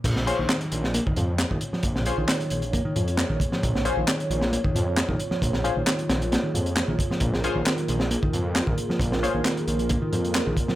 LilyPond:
<<
  \new Staff \with { instrumentName = "Analog synth pad" } { \time 4/4 \key bes \minor \tempo 4 = 134 << { des''1~ | des''1~ | des''1~ | des''1 |
bes'1~ | bes'1 | } \\ { <bes f' aes'>1~ | <bes f' aes'>1~ | <bes f' aes'>1~ | <bes f' aes'>1~ |
<bes f' aes'>1~ | <bes f' aes'>1 | } >> }
  \new Staff \with { instrumentName = "Synth stab" } { \time 4/4 \key bes \minor r8 <des' f' aes' c''>8 r2. | r8 <des' f' aes' c''>8 r2. | r8 <des' f' aes' c''>8 r2. | r8 <des' f' aes' c''>8 r2. |
r8 <des' f' aes' c''>8 r2. | r8 <des' f' aes' c''>8 r2. | }
  \new Staff \with { instrumentName = "Picked electric bass" } { \clef bass \time 4/4 \key bes \minor bes,16 r8 ees4 r16 bes16 ees16 aes,16 r8 ees16 r16 f16 | bes,16 r8 ees4 r16 bes16 ees16 aes,16 r8 ees16 r16 f16 | bes,16 r8 ees4 r16 bes16 ees16 aes,16 r8 ees16 r16 f16 | bes,16 r8 ees4 r16 bes16 ees16 aes,16 r8 ees16 r16 f16 |
bes,16 r8 ees4 r16 bes16 ees16 aes,16 r8 ees16 r16 f16 | bes,16 r8 ees4 r16 bes16 ees16 aes,16 r8 ees16 r16 f16 | }
  \new Staff \with { instrumentName = "Detuned saw bass" } { \clef bass \time 4/4 \key bes \minor bes,,8 r16 bes,,16 r8 bes,,8 r8 f,8 r16 bes,,16 r8 | bes,,8 r16 bes,,16 r8 bes,,8 r8 f,8 r16 bes,,16 r8 | bes,,8 r16 bes,,16 r8 bes,,8 r8 f,8 r16 bes,,16 r8 | bes,,8 r16 bes,,16 r8 bes,,8 r8 f,8 r16 bes,,16 r8 |
bes,,8 r16 bes,,16 r8 bes,,8 r8 f,8 r16 bes,,16 r8 | bes,,8 r16 bes,,16 r8 bes,,8 r8 f,8 r16 bes,,16 r8 | }
  \new DrumStaff \with { instrumentName = "Drums" } \drummode { \time 4/4 <cymc hh bd>16 sn16 hh8 <hc hh sn>16 hh16 hh16 sn16 hh16 bd16 hh8 <hc hh sn>16 bd16 hh16 sn16 | <hh bd>16 sn16 hh8 <hc hh sn>16 hh16 hh16 hh16 <hh bd>8 hh16 hh16 <hc hh sn>8 <hh bd>16 sn16 | <hh bd>16 sn16 hh8 <hc hh sn>16 hh16 hh16 sn16 hh16 bd16 hh8 <hc hh sn>16 bd16 hh16 sn16 | <hh bd>16 sn16 hh8 <hc hh sn>16 hh16 <hh sn>16 hh16 <hh sn>8 hh16 hh16 <hc hh sn>8 <hh bd>16 sn16 |
<hh bd>16 sn16 hh8 <hc hh sn>16 hh16 hh16 sn16 hh16 bd16 hh8 <hc hh sn>16 bd16 hh16 sn16 | <hh bd>16 sn16 hh8 <hc hh sn>16 hh16 hh16 hh16 <hh bd>8 hh16 hh16 <hc hh sn>8 <hh bd>16 sn16 | }
>>